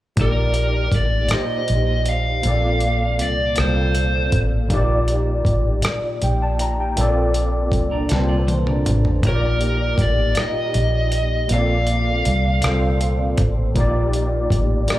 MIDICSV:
0, 0, Header, 1, 7, 480
1, 0, Start_track
1, 0, Key_signature, -2, "major"
1, 0, Tempo, 754717
1, 111, Time_signature, 6, 3, 24, 8
1, 9532, End_track
2, 0, Start_track
2, 0, Title_t, "Lead electric guitar"
2, 0, Program_c, 0, 29
2, 133, Note_on_c, 0, 70, 73
2, 577, Note_off_c, 0, 70, 0
2, 608, Note_on_c, 0, 74, 93
2, 842, Note_off_c, 0, 74, 0
2, 845, Note_on_c, 0, 75, 76
2, 1327, Note_on_c, 0, 77, 90
2, 1332, Note_off_c, 0, 75, 0
2, 2046, Note_on_c, 0, 74, 82
2, 2061, Note_off_c, 0, 77, 0
2, 2286, Note_off_c, 0, 74, 0
2, 2289, Note_on_c, 0, 72, 63
2, 2795, Note_off_c, 0, 72, 0
2, 5896, Note_on_c, 0, 70, 68
2, 6338, Note_off_c, 0, 70, 0
2, 6372, Note_on_c, 0, 74, 83
2, 6586, Note_off_c, 0, 74, 0
2, 6612, Note_on_c, 0, 75, 84
2, 7296, Note_off_c, 0, 75, 0
2, 7330, Note_on_c, 0, 77, 89
2, 8495, Note_off_c, 0, 77, 0
2, 9532, End_track
3, 0, Start_track
3, 0, Title_t, "Clean electric guitar"
3, 0, Program_c, 1, 27
3, 5032, Note_on_c, 1, 70, 61
3, 5038, Note_on_c, 1, 62, 53
3, 5146, Note_off_c, 1, 70, 0
3, 5149, Note_off_c, 1, 62, 0
3, 5151, Note_on_c, 1, 69, 64
3, 5155, Note_on_c, 1, 60, 53
3, 5265, Note_off_c, 1, 69, 0
3, 5267, Note_off_c, 1, 60, 0
3, 5271, Note_on_c, 1, 74, 68
3, 5274, Note_on_c, 1, 65, 60
3, 5385, Note_off_c, 1, 74, 0
3, 5387, Note_off_c, 1, 65, 0
3, 5389, Note_on_c, 1, 72, 63
3, 5504, Note_off_c, 1, 72, 0
3, 5510, Note_on_c, 1, 62, 56
3, 5513, Note_on_c, 1, 70, 54
3, 5853, Note_off_c, 1, 62, 0
3, 5853, Note_off_c, 1, 70, 0
3, 9532, End_track
4, 0, Start_track
4, 0, Title_t, "Tine electric piano"
4, 0, Program_c, 2, 4
4, 101, Note_on_c, 2, 46, 69
4, 110, Note_on_c, 2, 58, 61
4, 120, Note_on_c, 2, 63, 67
4, 127, Note_on_c, 2, 67, 66
4, 136, Note_on_c, 2, 74, 80
4, 248, Control_c, 2, 64, 127
4, 744, Note_off_c, 2, 46, 0
4, 748, Note_off_c, 2, 58, 0
4, 753, Note_off_c, 2, 63, 0
4, 757, Note_off_c, 2, 67, 0
4, 761, Note_off_c, 2, 74, 0
4, 818, Note_on_c, 2, 46, 58
4, 826, Note_on_c, 2, 58, 50
4, 836, Note_on_c, 2, 63, 48
4, 844, Note_on_c, 2, 67, 56
4, 852, Note_on_c, 2, 72, 68
4, 1462, Note_off_c, 2, 46, 0
4, 1466, Note_off_c, 2, 58, 0
4, 1471, Note_off_c, 2, 63, 0
4, 1475, Note_off_c, 2, 67, 0
4, 1479, Note_off_c, 2, 72, 0
4, 1538, Note_on_c, 2, 46, 71
4, 1546, Note_on_c, 2, 58, 59
4, 1557, Note_on_c, 2, 60, 62
4, 1558, Control_c, 2, 64, 0
4, 1563, Note_on_c, 2, 69, 66
4, 1573, Note_on_c, 2, 74, 76
4, 1659, Control_c, 2, 64, 127
4, 2182, Note_off_c, 2, 46, 0
4, 2187, Note_off_c, 2, 58, 0
4, 2192, Note_off_c, 2, 60, 0
4, 2195, Note_off_c, 2, 69, 0
4, 2200, Note_off_c, 2, 74, 0
4, 2262, Note_on_c, 2, 46, 59
4, 2270, Note_on_c, 2, 58, 49
4, 2277, Note_on_c, 2, 60, 52
4, 2287, Note_on_c, 2, 69, 59
4, 2295, Note_on_c, 2, 77, 65
4, 2904, Note_off_c, 2, 46, 0
4, 2908, Note_off_c, 2, 58, 0
4, 2912, Note_off_c, 2, 60, 0
4, 2917, Note_off_c, 2, 69, 0
4, 2921, Note_off_c, 2, 77, 0
4, 2980, Note_on_c, 2, 46, 83
4, 2987, Note_on_c, 2, 58, 84
4, 2997, Note_on_c, 2, 63, 71
4, 2998, Control_c, 2, 64, 0
4, 3006, Note_on_c, 2, 67, 71
4, 3015, Note_on_c, 2, 74, 96
4, 3097, Control_c, 2, 64, 127
4, 3623, Note_off_c, 2, 46, 0
4, 3627, Note_off_c, 2, 58, 0
4, 3632, Note_off_c, 2, 63, 0
4, 3636, Note_off_c, 2, 67, 0
4, 3641, Note_off_c, 2, 74, 0
4, 3964, Note_on_c, 2, 79, 54
4, 4072, Note_off_c, 2, 79, 0
4, 4084, Note_on_c, 2, 81, 63
4, 4192, Note_off_c, 2, 81, 0
4, 4203, Note_on_c, 2, 82, 61
4, 4312, Note_off_c, 2, 82, 0
4, 4326, Note_on_c, 2, 79, 55
4, 4424, Note_on_c, 2, 46, 85
4, 4433, Note_on_c, 2, 58, 75
4, 4441, Control_c, 2, 64, 0
4, 4443, Note_on_c, 2, 60, 82
4, 4450, Note_on_c, 2, 69, 80
4, 4460, Note_on_c, 2, 74, 93
4, 4547, Note_off_c, 2, 79, 0
4, 4569, Control_c, 2, 64, 127
4, 5065, Note_off_c, 2, 46, 0
4, 5070, Note_off_c, 2, 58, 0
4, 5075, Note_off_c, 2, 60, 0
4, 5078, Note_off_c, 2, 69, 0
4, 5083, Note_off_c, 2, 74, 0
4, 5145, Note_on_c, 2, 46, 66
4, 5155, Note_on_c, 2, 58, 59
4, 5162, Note_on_c, 2, 60, 63
4, 5172, Note_on_c, 2, 81, 63
4, 5181, Note_on_c, 2, 71, 59
4, 5207, Note_off_c, 2, 71, 0
4, 5221, Note_on_c, 2, 72, 69
4, 5786, Note_off_c, 2, 46, 0
4, 5791, Note_off_c, 2, 58, 0
4, 5794, Note_off_c, 2, 60, 0
4, 5799, Note_off_c, 2, 81, 0
4, 5824, Note_off_c, 2, 72, 0
4, 5867, Note_on_c, 2, 46, 73
4, 5874, Note_on_c, 2, 58, 63
4, 5879, Control_c, 2, 64, 0
4, 5882, Note_on_c, 2, 63, 65
4, 5890, Note_on_c, 2, 67, 72
4, 5900, Note_on_c, 2, 73, 69
4, 5927, Note_off_c, 2, 73, 0
4, 5941, Note_on_c, 2, 74, 76
4, 6005, Control_c, 2, 64, 127
4, 6507, Note_off_c, 2, 46, 0
4, 6510, Note_off_c, 2, 58, 0
4, 6514, Note_off_c, 2, 63, 0
4, 6518, Note_off_c, 2, 67, 0
4, 6544, Note_off_c, 2, 74, 0
4, 6583, Note_on_c, 2, 46, 57
4, 6591, Note_on_c, 2, 58, 53
4, 6601, Note_on_c, 2, 63, 56
4, 6610, Note_on_c, 2, 67, 54
4, 6618, Note_on_c, 2, 75, 64
4, 7225, Note_off_c, 2, 46, 0
4, 7229, Note_off_c, 2, 58, 0
4, 7234, Note_off_c, 2, 63, 0
4, 7239, Note_off_c, 2, 67, 0
4, 7242, Note_off_c, 2, 75, 0
4, 7303, Note_on_c, 2, 46, 72
4, 7313, Note_on_c, 2, 58, 72
4, 7319, Control_c, 2, 64, 0
4, 7320, Note_on_c, 2, 60, 66
4, 7331, Note_on_c, 2, 69, 67
4, 7338, Note_on_c, 2, 74, 77
4, 7430, Control_c, 2, 64, 127
4, 7945, Note_off_c, 2, 46, 0
4, 7950, Note_off_c, 2, 58, 0
4, 7953, Note_off_c, 2, 60, 0
4, 7959, Note_off_c, 2, 69, 0
4, 7962, Note_off_c, 2, 74, 0
4, 8023, Note_on_c, 2, 46, 71
4, 8032, Note_on_c, 2, 58, 67
4, 8041, Note_on_c, 2, 60, 66
4, 8049, Note_on_c, 2, 69, 67
4, 8058, Note_on_c, 2, 72, 78
4, 8665, Note_off_c, 2, 46, 0
4, 8669, Note_off_c, 2, 58, 0
4, 8674, Note_off_c, 2, 60, 0
4, 8678, Note_off_c, 2, 69, 0
4, 8682, Note_off_c, 2, 72, 0
4, 8742, Note_on_c, 2, 46, 90
4, 8751, Note_on_c, 2, 58, 83
4, 8759, Control_c, 2, 64, 0
4, 8760, Note_on_c, 2, 63, 82
4, 8767, Note_on_c, 2, 67, 79
4, 8775, Note_on_c, 2, 74, 99
4, 8857, Control_c, 2, 64, 127
4, 9384, Note_off_c, 2, 46, 0
4, 9389, Note_off_c, 2, 58, 0
4, 9393, Note_off_c, 2, 63, 0
4, 9397, Note_off_c, 2, 67, 0
4, 9401, Note_off_c, 2, 74, 0
4, 9459, Note_on_c, 2, 46, 65
4, 9467, Note_on_c, 2, 58, 69
4, 9477, Note_on_c, 2, 63, 64
4, 9484, Note_on_c, 2, 67, 68
4, 9494, Note_on_c, 2, 74, 83
4, 9532, Note_off_c, 2, 46, 0
4, 9532, Note_off_c, 2, 58, 0
4, 9532, Note_off_c, 2, 63, 0
4, 9532, Note_off_c, 2, 67, 0
4, 9532, Note_off_c, 2, 74, 0
4, 9532, End_track
5, 0, Start_track
5, 0, Title_t, "Fingered electric bass"
5, 0, Program_c, 3, 33
5, 114, Note_on_c, 3, 34, 90
5, 567, Note_off_c, 3, 34, 0
5, 589, Note_on_c, 3, 33, 81
5, 806, Note_off_c, 3, 33, 0
5, 1080, Note_on_c, 3, 34, 70
5, 1530, Note_off_c, 3, 34, 0
5, 1560, Note_on_c, 3, 34, 89
5, 2042, Note_off_c, 3, 34, 0
5, 2042, Note_on_c, 3, 36, 73
5, 2253, Note_off_c, 3, 36, 0
5, 2281, Note_on_c, 3, 36, 75
5, 2731, Note_off_c, 3, 36, 0
5, 2758, Note_on_c, 3, 33, 71
5, 2971, Note_off_c, 3, 33, 0
5, 2996, Note_on_c, 3, 34, 86
5, 3448, Note_off_c, 3, 34, 0
5, 3473, Note_on_c, 3, 33, 80
5, 3688, Note_off_c, 3, 33, 0
5, 3959, Note_on_c, 3, 34, 72
5, 4410, Note_off_c, 3, 34, 0
5, 4440, Note_on_c, 3, 34, 90
5, 4912, Note_off_c, 3, 34, 0
5, 4912, Note_on_c, 3, 36, 80
5, 5128, Note_off_c, 3, 36, 0
5, 5161, Note_on_c, 3, 36, 81
5, 5611, Note_off_c, 3, 36, 0
5, 5643, Note_on_c, 3, 33, 70
5, 5854, Note_off_c, 3, 33, 0
5, 5878, Note_on_c, 3, 34, 86
5, 6329, Note_off_c, 3, 34, 0
5, 6352, Note_on_c, 3, 33, 76
5, 6568, Note_off_c, 3, 33, 0
5, 6838, Note_on_c, 3, 34, 78
5, 7289, Note_off_c, 3, 34, 0
5, 7319, Note_on_c, 3, 34, 93
5, 7770, Note_off_c, 3, 34, 0
5, 7800, Note_on_c, 3, 36, 77
5, 8012, Note_off_c, 3, 36, 0
5, 8038, Note_on_c, 3, 36, 75
5, 8489, Note_off_c, 3, 36, 0
5, 8516, Note_on_c, 3, 33, 78
5, 8730, Note_off_c, 3, 33, 0
5, 8753, Note_on_c, 3, 34, 87
5, 9207, Note_off_c, 3, 34, 0
5, 9231, Note_on_c, 3, 33, 83
5, 9447, Note_off_c, 3, 33, 0
5, 9532, End_track
6, 0, Start_track
6, 0, Title_t, "Muted fingered electric bass strokes"
6, 845, Note_on_c, 9, 29, 40
6, 909, Note_off_c, 9, 29, 0
6, 3725, Note_on_c, 9, 29, 38
6, 3789, Note_off_c, 9, 29, 0
6, 6606, Note_on_c, 9, 29, 40
6, 6669, Note_off_c, 9, 29, 0
6, 9532, End_track
7, 0, Start_track
7, 0, Title_t, "Drums"
7, 107, Note_on_c, 9, 42, 61
7, 108, Note_on_c, 9, 36, 100
7, 171, Note_off_c, 9, 42, 0
7, 172, Note_off_c, 9, 36, 0
7, 342, Note_on_c, 9, 42, 45
7, 406, Note_off_c, 9, 42, 0
7, 583, Note_on_c, 9, 36, 66
7, 587, Note_on_c, 9, 42, 49
7, 646, Note_off_c, 9, 36, 0
7, 651, Note_off_c, 9, 42, 0
7, 818, Note_on_c, 9, 42, 51
7, 833, Note_on_c, 9, 37, 92
7, 881, Note_off_c, 9, 42, 0
7, 896, Note_off_c, 9, 37, 0
7, 1068, Note_on_c, 9, 42, 47
7, 1131, Note_off_c, 9, 42, 0
7, 1308, Note_on_c, 9, 42, 49
7, 1371, Note_off_c, 9, 42, 0
7, 1548, Note_on_c, 9, 42, 59
7, 1611, Note_off_c, 9, 42, 0
7, 1784, Note_on_c, 9, 42, 41
7, 1848, Note_off_c, 9, 42, 0
7, 2030, Note_on_c, 9, 42, 53
7, 2094, Note_off_c, 9, 42, 0
7, 2262, Note_on_c, 9, 42, 51
7, 2277, Note_on_c, 9, 37, 88
7, 2325, Note_off_c, 9, 42, 0
7, 2341, Note_off_c, 9, 37, 0
7, 2510, Note_on_c, 9, 42, 49
7, 2574, Note_off_c, 9, 42, 0
7, 2749, Note_on_c, 9, 42, 56
7, 2750, Note_on_c, 9, 36, 77
7, 2813, Note_off_c, 9, 42, 0
7, 2814, Note_off_c, 9, 36, 0
7, 2990, Note_on_c, 9, 36, 104
7, 2991, Note_on_c, 9, 42, 59
7, 3053, Note_off_c, 9, 36, 0
7, 3054, Note_off_c, 9, 42, 0
7, 3230, Note_on_c, 9, 42, 42
7, 3293, Note_off_c, 9, 42, 0
7, 3466, Note_on_c, 9, 36, 73
7, 3475, Note_on_c, 9, 42, 44
7, 3529, Note_off_c, 9, 36, 0
7, 3538, Note_off_c, 9, 42, 0
7, 3704, Note_on_c, 9, 42, 61
7, 3719, Note_on_c, 9, 37, 95
7, 3767, Note_off_c, 9, 42, 0
7, 3782, Note_off_c, 9, 37, 0
7, 3953, Note_on_c, 9, 42, 43
7, 4017, Note_off_c, 9, 42, 0
7, 4193, Note_on_c, 9, 42, 52
7, 4257, Note_off_c, 9, 42, 0
7, 4432, Note_on_c, 9, 42, 61
7, 4496, Note_off_c, 9, 42, 0
7, 4670, Note_on_c, 9, 42, 42
7, 4734, Note_off_c, 9, 42, 0
7, 4908, Note_on_c, 9, 36, 71
7, 4916, Note_on_c, 9, 42, 48
7, 4971, Note_off_c, 9, 36, 0
7, 4980, Note_off_c, 9, 42, 0
7, 5146, Note_on_c, 9, 42, 53
7, 5161, Note_on_c, 9, 38, 45
7, 5209, Note_off_c, 9, 42, 0
7, 5224, Note_off_c, 9, 38, 0
7, 5395, Note_on_c, 9, 48, 61
7, 5396, Note_on_c, 9, 42, 46
7, 5458, Note_off_c, 9, 48, 0
7, 5460, Note_off_c, 9, 42, 0
7, 5513, Note_on_c, 9, 47, 59
7, 5577, Note_off_c, 9, 47, 0
7, 5636, Note_on_c, 9, 42, 56
7, 5636, Note_on_c, 9, 45, 75
7, 5699, Note_off_c, 9, 42, 0
7, 5699, Note_off_c, 9, 45, 0
7, 5755, Note_on_c, 9, 43, 71
7, 5818, Note_off_c, 9, 43, 0
7, 5872, Note_on_c, 9, 36, 104
7, 5873, Note_on_c, 9, 42, 59
7, 5935, Note_off_c, 9, 36, 0
7, 5936, Note_off_c, 9, 42, 0
7, 6110, Note_on_c, 9, 42, 46
7, 6173, Note_off_c, 9, 42, 0
7, 6346, Note_on_c, 9, 36, 71
7, 6351, Note_on_c, 9, 42, 47
7, 6409, Note_off_c, 9, 36, 0
7, 6415, Note_off_c, 9, 42, 0
7, 6583, Note_on_c, 9, 42, 57
7, 6598, Note_on_c, 9, 37, 88
7, 6646, Note_off_c, 9, 42, 0
7, 6661, Note_off_c, 9, 37, 0
7, 6832, Note_on_c, 9, 42, 45
7, 6896, Note_off_c, 9, 42, 0
7, 7071, Note_on_c, 9, 42, 51
7, 7134, Note_off_c, 9, 42, 0
7, 7309, Note_on_c, 9, 42, 64
7, 7373, Note_off_c, 9, 42, 0
7, 7547, Note_on_c, 9, 42, 41
7, 7611, Note_off_c, 9, 42, 0
7, 7793, Note_on_c, 9, 42, 51
7, 7857, Note_off_c, 9, 42, 0
7, 8026, Note_on_c, 9, 42, 59
7, 8041, Note_on_c, 9, 37, 90
7, 8089, Note_off_c, 9, 42, 0
7, 8104, Note_off_c, 9, 37, 0
7, 8272, Note_on_c, 9, 42, 50
7, 8336, Note_off_c, 9, 42, 0
7, 8507, Note_on_c, 9, 42, 53
7, 8509, Note_on_c, 9, 36, 87
7, 8570, Note_off_c, 9, 42, 0
7, 8573, Note_off_c, 9, 36, 0
7, 8749, Note_on_c, 9, 36, 100
7, 8749, Note_on_c, 9, 42, 60
7, 8812, Note_off_c, 9, 36, 0
7, 8813, Note_off_c, 9, 42, 0
7, 8989, Note_on_c, 9, 42, 47
7, 9053, Note_off_c, 9, 42, 0
7, 9225, Note_on_c, 9, 36, 72
7, 9234, Note_on_c, 9, 42, 51
7, 9288, Note_off_c, 9, 36, 0
7, 9297, Note_off_c, 9, 42, 0
7, 9463, Note_on_c, 9, 42, 57
7, 9478, Note_on_c, 9, 37, 94
7, 9527, Note_off_c, 9, 42, 0
7, 9532, Note_off_c, 9, 37, 0
7, 9532, End_track
0, 0, End_of_file